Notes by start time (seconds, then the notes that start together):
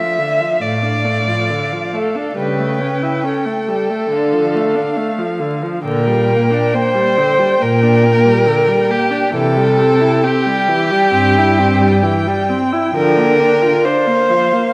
Already playing: F3 E5 F5
0.19 D3
0.40 F3
0.61 A2 A3 D5
0.83 D4
1.05 A3
1.27 F3
1.51 D3
1.73 F3
1.93 A3 A4
2.15 D4
2.36 C#3 G3 B4 G5
2.59 A3
2.80 C#4
3.02 E4
3.24 C#4 A4
3.46 A3
3.68 G3
3.90 A3
4.11 D3 F5
4.33 F3
4.55 A3
4.75 D4
4.97 A3
5.19 F3
5.40 D3
5.62 F3
5.84 A#2 D3 A#4 G5
6.07 G3
6.30 A#3
6.51 D4
6.74 A#3 C5
6.95 G3
7.17 D3
7.39 G3
7.61 A#2 A#3 A#4
7.83 D4
8.03 A#3
8.25 G3
8.46 D3
8.68 G3
8.89 A#3 G4
9.11 D4
9.34 C3 E3 A4 G5
9.57 G3
9.79 C4
10.01 E4
10.24 C4 G4
10.46 G3
10.69 E3
10.91 G3
11.13 G2 C4
11.37 E4
11.59 C4
11.81 G3
12.03 E3
12.27 G3
12.50 C4
12.73 E4
12.95 D3 F3 A#4
13.17 A#3
13.40 D4
13.62 F4
13.85 D4 C5 F5
14.07 A#3
14.30 F3
14.53 A#3